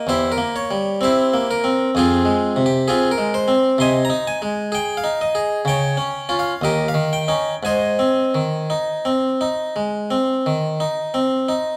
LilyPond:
\new Staff \with { instrumentName = "Harpsichord" } { \time 4/4 \key f \minor \tempo 4 = 63 << { <e' g' c''>16 bes'16 des''8 <e' g' c''>8 bes'8 <c' f' aes'>8. g'16 <c' f' aes'>16 bes'16 c''8 | \key aes \major <ees'' aes'' c'''>16 bes''16 aes''8 g''16 f''16 ees''8 <des'' g''>8. f''16 <g' bes' ees''>16 f''16 g''8 | <c'' ees'' aes''>2.~ <c'' ees'' aes''>8 r8 | } \\ { \tuplet 3/2 { e,8 bes8 g8 c'8 bes8 c'8 f,8 aes8 c8 r8 aes8 c'8 } | \tuplet 3/2 { c8 ees'8 aes8 aes'8 ees'8 aes'8 des8 des'8 <des' f'>8 ees,8 ees8 <des' ees'>8 } | \tuplet 3/2 { aes,8 c'8 ees8 ees'8 c'8 ees'8 aes8 c'8 ees8 ees'8 c'8 ees'8 } | } >> }